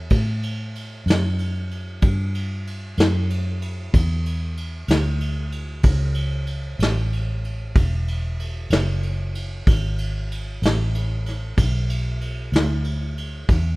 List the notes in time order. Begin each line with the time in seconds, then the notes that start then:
0.10 A2, kick, ride
0.43 ride
0.75 ride
1.06 F#2, ride
1.10 snare
1.39 ride
1.71 ride
2.02 G2, kick, ride
2.35 ride
2.67 ride
2.97 F#2, snare, ride
3.30 ride
3.62 ride
3.93 E2, kick, ride
4.26 ride
4.57 ride
4.88 D2, snare, ride
5.20 ride
5.52 ride
5.83 C#2, kick, ride
6.14 ride
6.47 ride
6.79 A1, snare, ride
7.13 ride
7.44 ride
7.76 E1, kick, ride
8.08 ride
8.40 ride
8.70 F#1, snare, ride
9.03 ride
9.35 ride
9.67 G#1, kick, snare, ride
9.98 ride
10.32 ride
10.62 A1, snare, ride
10.95 ride
11.26 snare, ride
11.57 B1, kick, ride
11.90 ride
12.21 ride
12.52 D2, snare, ride
12.84 ride
13.18 ride
13.49 E2, kick, snare, ride